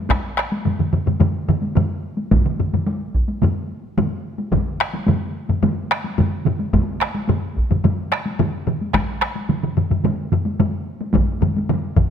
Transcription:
0.09 taiko rim medium
0.09 taiko medium
0.09 taiko high medium
0.38 taiko rim medium
0.52 taiko high soft
0.65 taiko low-mid medium
0.65 taiko mid medium
0.65 taiko high medium
0.79 taiko low-mid medium
0.79 taiko mid medium
0.93 taiko low-mid medium
0.93 taiko mid medium
1.07 taiko low-mid medium
1.07 taiko mid medium
1.07 taiko high soft
1.20 taiko low-mid medium
1.20 taiko mid medium
1.20 taiko high medium
1.49 taiko low-mid medium
1.49 taiko mid medium
1.62 taiko high soft
1.76 taiko low-mid medium
1.76 taiko mid medium
1.76 taiko high medium
2.17 taiko high soft
2.31 taiko medium
2.31 taiko low-mid medium
2.31 taiko mid medium
2.31 taiko high medium
2.45 taiko low-mid medium
2.45 taiko mid medium
2.59 taiko low-mid medium
2.59 taiko mid medium
2.73 taiko low-mid medium
2.73 taiko mid medium
2.73 taiko high medium
2.87 taiko high medium
3.15 taiko medium
3.28 taiko high soft
3.42 taiko low-mid medium
3.42 taiko mid medium
3.42 taiko high medium
3.97 taiko low-mid medium
3.97 taiko mid medium
3.97 taiko high medium
4.38 taiko high soft
4.52 taiko medium
4.52 taiko low-mid medium
4.52 taiko mid medium
4.52 taiko high medium
4.80 taiko rim medium
4.93 taiko high soft
5.07 taiko low-mid medium
5.07 taiko mid medium
5.07 taiko high medium
5.49 taiko low-mid medium
5.49 taiko mid medium
5.49 taiko high soft
5.63 taiko low-mid medium
5.63 taiko mid medium
5.63 taiko high medium
5.91 taiko rim medium
6.04 taiko high soft
6.18 taiko low-mid medium
6.18 taiko mid medium
6.18 taiko high medium
6.46 taiko low-mid medium
6.46 taiko mid medium
6.60 taiko high soft
6.73 taiko medium
6.73 taiko low-mid medium
6.73 taiko mid medium
6.73 taiko high medium
7.01 taiko rim medium
7.15 taiko high medium
7.29 taiko low-mid medium
7.29 taiko mid medium
7.29 taiko high medium
7.56 taiko medium
7.71 taiko low-mid medium
7.71 taiko mid medium
7.71 taiko high soft
7.84 taiko low-mid medium
7.84 taiko mid medium
7.84 taiko high medium
8.12 taiko rim medium
8.26 taiko high soft
8.39 taiko low-mid medium
8.39 taiko mid medium
8.39 taiko high medium
8.67 taiko low-mid medium
8.67 taiko mid medium
8.81 taiko high soft
8.94 taiko rim medium
8.94 taiko medium
8.94 taiko high medium
9.22 taiko rim medium
9.36 taiko high soft
9.49 taiko low-mid medium
9.49 taiko mid medium
9.49 taiko high medium
9.63 taiko low-mid medium
9.63 taiko mid medium
9.77 taiko low-mid medium
9.77 taiko mid medium
9.90 taiko low-mid medium
9.90 taiko mid medium
9.90 taiko high soft
10.04 taiko low-mid medium
10.04 taiko mid medium
10.04 taiko high medium
10.32 taiko low-mid medium
10.32 taiko mid medium
10.45 taiko high soft
10.59 taiko low-mid medium
10.59 taiko mid medium
10.59 taiko high medium
11.01 taiko high soft
11.14 taiko medium
11.14 taiko low-mid medium
11.14 taiko mid medium
11.14 taiko high medium
11.42 taiko low-mid medium
11.42 taiko mid medium
11.42 taiko high soft
11.56 taiko high medium
11.69 taiko low-mid medium
11.69 taiko mid medium
11.69 taiko high medium
11.97 taiko medium
11.97 taiko low-mid medium
11.97 taiko mid medium

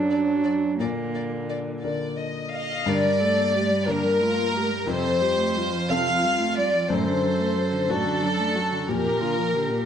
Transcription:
0.00 0.76 F#2 medium
0.00 0.82 F#3 medium
0.00 0.76 D4 soft
0.00 0.79 D4 medium
0.00 0.76 A4 soft
0.11 0.19 D5 medium
0.45 0.53 D5 soft
0.80 2.83 A#2 medium
0.80 2.36 D3 medium
0.80 1.82 A#3 medium
0.80 0.88 D5 medium
1.15 1.23 D5 soft
1.50 1.58 D5 soft
1.84 2.83 D3 soft
1.84 2.83 A#4 soft
1.84 2.16 D5 medium
2.18 2.52 D#5 medium
2.53 2.85 D#5 medium
2.53 2.87 F5 medium
2.86 4.83 G2 medium
2.86 3.06 D3 medium
2.86 3.22 A#4 medium
2.86 3.88 D5 loud
3.04 3.22 G3 medium
3.20 3.39 A3 medium
3.20 3.55 A4 medium
3.38 3.56 A#3 medium
3.54 3.73 A3 medium
3.54 3.90 G4 medium
3.71 3.89 G3 medium
3.87 4.05 D3 medium
3.87 4.83 A#3 medium
3.87 4.24 D4 medium
3.87 4.83 A#4 medium
3.87 4.88 A#4 loud
4.03 4.21 G3 medium
4.20 4.38 A3 medium
4.20 4.57 F4 medium
4.37 4.55 A#3 medium
4.53 4.71 A3 medium
4.53 4.88 G4 medium
4.70 4.86 G3 medium
4.87 6.86 F2 medium
4.87 5.06 C3 medium
4.87 5.23 A4 medium
4.87 5.91 C5 loud
5.04 5.22 F3 medium
5.21 5.40 G3 medium
5.21 5.59 G4 medium
5.38 5.57 A3 medium
5.56 5.74 G3 medium
5.56 6.91 F4 medium
5.73 5.90 F3 medium
5.89 6.09 C3 medium
5.89 6.86 C4 medium
5.89 6.87 A4 medium
5.89 6.57 F5 loud
6.07 6.25 F3 medium
6.23 6.41 G3 medium
6.40 6.59 A3 medium
6.57 6.75 G3 medium
6.57 6.89 D5 medium
6.74 6.90 F3 medium
6.90 8.84 F#2 medium
6.90 7.08 A2 medium
6.90 7.91 A4 medium
6.90 7.89 C5 medium
7.06 7.24 D3 medium
7.23 7.41 F#3 medium
7.39 7.57 A3 medium
7.56 7.73 F#3 medium
7.72 7.90 D3 medium
7.88 8.06 A2 medium
7.88 8.84 D4 medium
7.88 8.24 F#4 medium
7.88 8.84 A4 medium
7.88 8.88 A4 loud
8.05 8.23 D3 medium
8.22 8.40 F#3 medium
8.22 8.57 D4 medium
8.39 8.57 A3 medium
8.55 8.73 F#3 medium
8.55 8.90 F#4 medium
8.72 8.88 D3 medium
8.88 9.06 F2 medium
8.88 9.85 A#2 medium
8.88 9.22 G4 medium
8.88 9.85 A#4 medium
9.05 9.22 A#2 medium
9.21 9.39 D3 medium
9.21 9.53 F4 medium
9.37 9.56 F3 medium
9.54 9.71 D3 medium
9.54 9.85 G4 medium
9.70 9.85 A#2 medium

